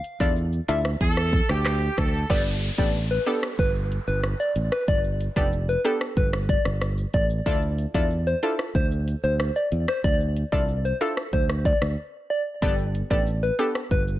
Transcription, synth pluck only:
0.20 D4 E4 F4 A4
0.68 D4 E4 F4 A4
2.30 B3 D4 G4 A4
2.78 B3 D4 G4 A4
3.26 B3 D4 G4 A4
5.36 B3 D4 G4 A4
5.85 B3 D4 G4 A4
7.46 D4 E4 F4 A4
7.94 D4 E4 F4 A4
8.43 D4 E4 F4 A4
10.52 D4 E4 F4 A4
11.01 D4 E4 F4 A4
12.62 B3 D4 G4 A4
13.10 B3 D4 G4 A4
13.59 B3 D4 G4 A4

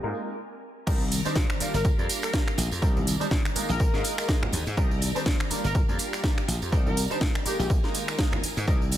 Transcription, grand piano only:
0.03 G#3 A#3 D#4 F4 A#4
0.87 G3 C4 D4 D#4 A#4
1.25 G3 C4 D4 D#4 C5
1.60 G3 A#3 D4 F4 A#4
1.98 G3 A#3 D4 F4 A#4
2.33 G3 A#3 D4 F4 A#4
2.82 G3 C4 D4 D#4 A#4
3.20 G3 C4 D4 D#4 C5
3.55 G#3 A#3 D#4 F4 A#4
3.93 G#3 A#3 D#4 F4 A#4
4.28 G#3 A#3 D#4 F4 A#4
4.77 G3 C4 D4 D#4 A#4
5.15 G3 C4 D4 D#4 C5
5.50 G3 A#3 D4 F4 A#4
5.88 G3 A#3 D4 F4 A#4
6.23 G3 A#3 D4 F4 A#4
6.72 G3 C4 D4 D#4 A#4
7.10 G3 C4 D4 D#4 C5
7.45 G#3 A#3 D#4 F4 A#4
7.84 G#3 A#3 D#4 F4 A#4
8.19 G#3 A#3 D#4 F4 A#4
8.67 G3 C4 D4 D#4 A#4

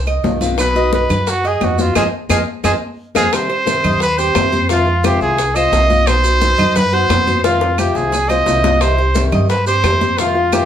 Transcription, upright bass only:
Already playing: C2
0.24 B1
1.09 F#2
1.61 F2
1.95 F2
2.29 F2
2.63 F2
3.15 F2
3.84 D#2
4.35 F2
5.21 C2
5.72 B1
6.58 F#2
7.09 F2
7.95 C2
8.47 C2
9.31 G2
9.83 F2

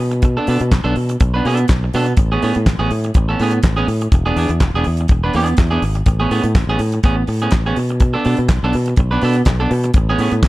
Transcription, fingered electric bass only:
Already playing: B2
0.48 B2
0.61 B2
0.72 B1
0.84 B1
0.97 B2
1.21 B1
1.45 B2
1.70 B1
1.94 B2
2.18 A1
2.43 A2
2.56 A2
2.66 A1
2.79 A1
2.91 A2
3.15 A1
3.40 A2
3.64 A1
3.88 A2
4.12 E1
4.36 E2
4.49 E2
4.61 E1
4.74 E1
4.87 E2
5.10 E1
5.34 E2
5.58 E2
5.82 G#1
6.06 A1
6.31 A2
6.44 A2
6.55 A1
6.67 A1
6.79 A2
7.04 A1
7.28 A2
7.53 A1
7.77 B2
8.26 B2
8.38 B2
8.49 B1
8.63 B1
8.75 B2
8.98 B1
9.22 B2
9.46 B1
9.71 B2
9.94 A1
10.18 A2
10.32 A2
10.43 A1

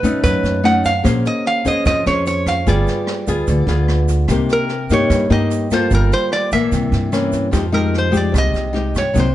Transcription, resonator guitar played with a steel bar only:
Already playing: B4
0.24 B4
0.65 F#5
0.86 F5
1.27 D#5
1.47 F5
1.68 D#5
1.87 D#5
2.07 C#5
2.27 C#5
2.48 F5
2.69 D5
4.53 A#4
4.93 C#5
5.32 D#5
5.74 C5
5.95 A#4
6.13 C5
6.33 D5
6.53 E5
7.74 A#4
7.98 C5
8.17 D5
8.38 D#5
8.98 C#5
9.20 C5

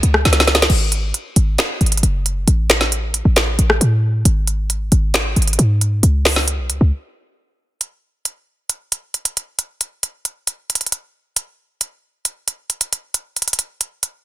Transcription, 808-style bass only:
0.03 C#2
0.25 C#2
0.70 G#1
1.36 G#1
1.81 G#1
2.03 F#1
2.48 A1
3.25 A1
3.59 A1
3.81 A2
4.25 G#1
4.92 G#1
5.36 G#1
5.59 G#2
6.03 C#2
6.59 B1
6.70 C#2
6.81 C#2

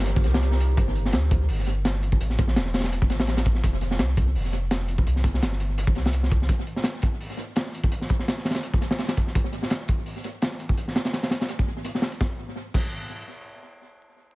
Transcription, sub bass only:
Already playing: G1
0.24 C2
0.77 G1
1.14 D2
1.49 G1
2.21 A1
2.56 E1
3.10 A1
3.63 F1
4.00 C2
4.35 F1
5.07 C2
5.42 G1
5.96 C2

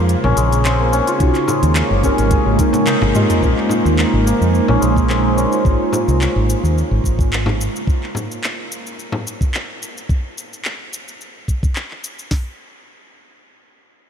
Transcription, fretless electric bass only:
Already playing: F2
0.24 A#1
0.37 A#1
1.20 B1
1.63 D#2
1.91 F#1
2.18 G#1
2.46 G#1
3.02 G#1
3.15 G#2
3.43 A#1
3.85 D#2
4.13 G#1
4.41 F2
4.69 A#1
4.82 A#1
5.65 G#1
6.08 C2
6.36 G#1
6.63 D#2
6.91 G#1
7.04 G#1

